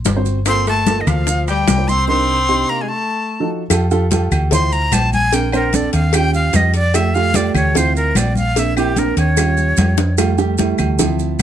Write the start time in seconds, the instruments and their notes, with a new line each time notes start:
0.05 fingered electric bass G1, high bongo, low bongo, high conga, high timbale, low timbale, maracas
0.16 upright piano C4 F#4 C5
0.26 high bongo, high conga, maracas
0.46 upright piano A#3 F4 A4, tenor saxophone C4, flute C6, high bongo, high conga, high timbale, claves, maracas
0.67 tenor saxophone A3, flute A5, high conga, high timbale, maracas
0.87 upright piano A#3 F4 A4, high bongo, high conga, high timbale, low timbale, maracas
0.99 tenor saxophone D#3, flute D#5
1.07 fingered electric bass D2, tenor saxophone F3, flute F5, high conga, low conga, high timbale, claves, maracas
1.27 high bongo, high conga, maracas
1.48 tenor saxophone G3, flute G5, high conga, high timbale, maracas
1.67 fingered electric bass C2, high bongo, low bongo, high conga, high timbale, low timbale, claves, maracas
1.78 upright piano A#3 F4 C5
1.88 tenor saxophone C4, flute C6, high conga, maracas
2.08 upright piano C3 D4 D#4 A#4, tenor saxophone C4, flute C6
2.49 upright piano C3 D4 D#4 G4
2.69 tenor saxophone A#3, flute A#5
2.81 tenor saxophone G#3, flute G#5
2.89 tenor saxophone A3, flute A5
3.40 upright piano F3 D#4 F#4 A4
3.70 fingered electric bass F2, upright piano F4 G4 A4, cowbell, high conga, low agogo, claves, maracas
3.91 upright piano F4 G4 A4, high conga, maracas
4.11 upright piano F4 G4 A4, cowbell, high conga, low timbale, low agogo, maracas
4.32 fingered electric bass D2, high conga, low conga, low agogo, claves, maracas
4.51 upright piano E4 F4 C5, flute C6, cowbell, high conga, low conga, low agogo, maracas
4.72 flute A#5, high conga, maracas
4.92 fingered electric bass A#1, flute A5, cowbell, high conga, low timbale, low agogo, claves, maracas
5.13 flute G#5, high conga, maracas
5.33 upright piano C4 D4 A#4, flute G5, cowbell, high conga, low agogo, maracas
5.52 upright piano C4 D4 C5, flute A#4, high conga, low agogo, claves, maracas
5.73 upright piano C4 D4 A4, flute D5, cowbell, high conga, low timbale, maracas
5.93 fingered electric bass D#2, flute F5, cowbell, low agogo, maracas
6.13 upright piano C#4 F4 G4, flute G5, cowbell, high conga, low agogo, claves, maracas
6.34 flute F5, high conga, maracas
6.53 fingered electric bass F2, flute D#5, cowbell, high conga, low timbale, low agogo, maracas
6.74 flute D5, cowbell, high conga, maracas
6.94 upright piano A3 F4 G4, flute E5, cowbell, high conga, low agogo, claves, maracas
7.14 upright piano A3 F4 G4, flute F5, high conga, maracas
7.34 upright piano A3 F4 G4, flute D5, cowbell, high conga, low timbale, low agogo, maracas
7.54 fingered electric bass D2, flute C#5, high conga, low conga, low agogo, claves, maracas
7.75 upright piano C4 E4 F4, flute C5, cowbell, high conga, low conga, low agogo, maracas
7.95 flute A#4, high conga, maracas
8.15 fingered electric bass A#1, flute D5, cowbell, high conga, low timbale, low agogo, claves, maracas
8.35 flute F5, high conga, maracas
8.56 upright piano A#3 C4 D4, flute E5, cowbell, high conga, low agogo, maracas
8.76 upright piano A#3 C4 E4, flute G4, high conga, low agogo, claves, maracas
8.96 upright piano A#3 C4 D4, flute A#4, cowbell, high conga, low timbale, maracas
9.17 fingered electric bass D#2, flute C#5, cowbell, low agogo, maracas
9.37 upright piano G3 C#4 F4, cowbell, high conga, low agogo, claves, maracas
9.57 high conga, maracas
9.77 fingered electric bass F2, cowbell, high conga, low timbale, low agogo, maracas
9.97 cowbell, high bongo, high timbale, maracas
10.18 upright piano G3 A3 F4, cowbell, high conga, low agogo, claves, maracas
10.38 upright piano G3 A3 G4, high conga, maracas
10.58 upright piano G3 A3 E4, cowbell, high conga, low timbale, low agogo, maracas
10.78 fingered electric bass D2, high conga, low conga, low agogo, claves, maracas
10.99 upright piano F3 C4 E4, cowbell, high conga, low conga, low agogo, maracas
11.19 high conga, maracas
11.39 fingered electric bass A#1